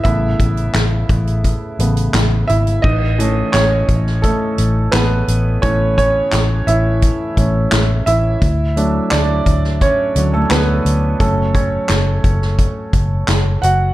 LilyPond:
<<
  \new Staff \with { instrumentName = "Upright piano" } { \time 4/4 \key a \lydian \tempo 4 = 86 <e' e''>2. r8 <e' e''>8 | <dis' dis''>4 <cis' cis''>4 <a a'>4 <b b'>4 | cis''8 <cis' cis''>4 <e' e''>2 <e' e''>8~ | <e' e''>4 <d' d''>4 <cis' cis''>8. <a a'>16 <b b'>4 |
a'8 <cis' cis''>4 r2 <fis' fis''>8 | }
  \new Staff \with { instrumentName = "Upright piano" } { \time 4/4 \key a \lydian <cis a b>4. r4 <cis a b>8 r4 | r8 <e a cis'>2.~ <e a cis'>8 | <e a cis'>2~ <e a cis'>8 <e a cis'>8 r4 | r8 <fis a d'>8 r4. <fis a d'>8 r4 |
<fis a cis'>1 | }
  \new Staff \with { instrumentName = "Fingered electric bass" } { \clef bass \time 4/4 \key a \lydian a,,8 a,,8 a,,8 a,,8. r16 a,,8 a,,8 gis,,8 | a,,4 a,,8 a,,8. r16 a,,8 a,,8 a,,8 | a,,4 a,,8 a,,8. r16 a,,8 a,,8 a,,8 | d,4 d,8 d,8. r16 d,8 d,8 d,8 |
fis,,4 fis,,8 fis,,8. r16 fis,,8 fis,,8 fis,,8 | }
  \new DrumStaff \with { instrumentName = "Drums" } \drummode { \time 4/4 <hh bd>8 <hh bd>16 hh16 <hc hh sn>8 <hh bd>16 hh16 <hh bd>8 hh16 hh16 <hc hh sn>8 hh16 hh16 | <cymc bd>8 hh8 <hc hh sn>8 <hh bd>16 sn16 <hh bd>8 hh8 <hc hh sn>8 hh8 | <hh bd>8 <hh bd>8 <hc hh sn>8 hh8 <hh bd>8 <hh bd>8 <hc hh sn>8 hh8 | <hh bd>8 hh8 <hc hh sn>8 <hh bd>16 sn16 <hh bd>8 hh8 <hc hh sn>8 hh8 |
<hh bd>8 <hh bd>8 <hc hh sn>8 <hh bd>16 sn16 <hh bd>8 <hh bd>8 <hc hh sn>8 hh8 | }
>>